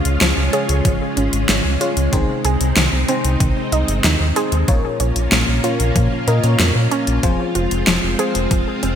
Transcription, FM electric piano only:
0.00 0.49 C#3 medium
0.00 0.49 C#4 medium
0.00 0.49 F4 medium
0.00 0.49 G#4 medium
0.00 0.49 C#5 loud
0.53 1.77 C#3 medium
0.53 1.77 C#4 medium
0.53 1.77 F4 medium
0.53 1.77 G#4 medium
0.53 1.77 C#5 loud
1.81 2.09 C#4 medium
1.81 2.09 F4 medium
1.81 2.09 G#4 medium
1.81 2.09 C#5 loud
2.13 3.05 C3 medium
2.13 3.05 C4 medium
2.13 3.05 D#4 medium
2.13 3.05 G#4 medium
2.13 3.05 C5 loud
3.09 4.32 C3 medium
3.09 4.32 C4 medium
3.09 4.32 D#4 medium
3.09 4.32 G#4 medium
3.09 4.32 C5 loud
4.36 4.64 C4 medium
4.36 4.64 D#4 medium
4.36 4.64 G#4 medium
4.36 4.64 C5 loud
4.68 5.60 A#2 medium
4.68 5.60 C#4 medium
4.68 5.60 F4 medium
4.68 5.60 A#4 medium
4.68 5.60 C#5 loud
5.64 6.24 A#2 medium
5.64 6.24 C#4 medium
5.64 6.24 F4 medium
5.64 6.24 A#4 medium
5.64 6.24 C#5 loud
6.28 6.41 A#2 medium
6.28 6.41 C#4 medium
6.28 6.41 F4 medium
6.28 6.41 A#4 medium
6.28 6.41 D#5 loud
6.44 7.20 A#2 medium
6.44 7.20 C#4 medium
6.44 7.20 F4 medium
6.44 7.20 A#4 medium
6.44 7.20 C#5 loud
7.23 8.15 F3 medium
7.23 8.15 C4 medium
7.23 8.15 F4 medium
7.23 8.15 G#4 medium
7.23 8.15 C5 loud
8.19 8.95 F3 medium
8.19 8.95 C4 medium
8.19 8.95 F4 medium
8.19 8.95 G#4 medium
8.19 8.95 C5 loud

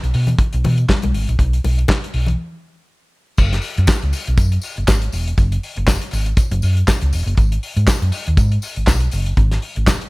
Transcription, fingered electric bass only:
0.03 0.11 B1 medium
0.15 0.33 B2 medium
0.54 0.62 B1 loud
0.66 0.84 B2 loud
1.04 1.12 B1 loud
1.14 1.24 G#1 medium
1.28 1.36 A#1 medium
1.39 1.58 B1 medium
1.64 1.83 B1 loud
2.14 2.33 B1 medium
3.39 3.58 F#1 loud
3.78 3.86 F#2 loud
4.03 4.11 C#2 medium
4.28 4.36 B1 medium
4.38 4.57 F#2 medium
4.77 4.86 F#1 medium
4.88 5.07 G#1 medium
5.13 5.32 E1 loud
5.38 5.57 F#1 loud
5.77 5.96 F#1 loud
6.13 6.32 G#1 loud
6.51 6.60 F#1 loud
6.63 6.82 F#2 loud
7.02 7.10 C#2 loud
7.13 7.23 E1 loud
7.26 7.34 F#1 loud
7.38 7.57 G#1 loud
7.77 7.85 G#2 medium
8.02 8.10 F#2 medium
8.27 8.35 D#2 medium
8.38 8.56 G#2 loud
8.77 8.85 G#1 medium
8.88 9.06 B1 loud
9.13 9.32 F#1 loud
9.38 9.56 G#1 loud
9.77 9.95 G#1 medium

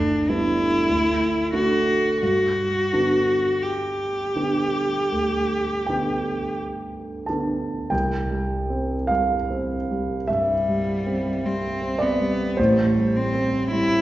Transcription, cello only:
0.00 0.30 D4 medium
0.29 1.53 E4 medium
1.53 2.20 F#4 medium
2.22 3.63 F#4 medium
3.62 6.59 G4 soft
10.31 11.47 G3 soft
11.45 12.03 C4 soft
12.02 12.60 B3 soft
12.59 13.18 A3 soft
13.16 13.71 C4 soft
13.71 14.01 E4 medium

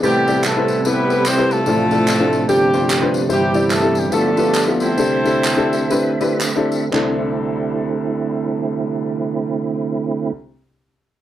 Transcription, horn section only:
0.04 0.42 G3 medium
0.04 0.81 B3 medium
0.04 0.44 C4 medium
0.04 0.42 G4 loud
0.45 0.86 A3 medium
0.45 1.22 C4 medium
0.45 0.85 E4 medium
0.45 0.86 A4 loud
0.86 1.27 B3 medium
0.86 1.63 E4 medium
0.86 1.63 G4 medium
0.86 1.27 B4 loud
1.28 1.51 C4 loud
1.28 1.52 C5 loud
1.51 2.49 A3 loud
1.51 2.44 C4 medium
1.51 2.44 F4 medium
1.51 2.49 A4 loud
2.48 3.10 G3 medium
2.48 3.26 C4 medium
2.48 3.26 D4 medium
2.48 3.10 G4 medium
3.31 3.69 G3 medium
3.31 4.08 C4 medium
3.31 4.08 E4 medium
3.31 3.69 G4 loud
3.72 3.99 A3 medium
3.72 3.99 A4 medium
3.99 4.12 G3 medium
3.99 4.12 G4 medium
4.12 4.64 A3 medium
4.12 4.94 D4 medium
4.12 4.94 F4 medium
4.12 4.64 A4 loud
4.81 6.40 C4 medium
4.81 6.36 E4 medium
4.81 6.36 A4 medium
4.81 6.40 C5 loud

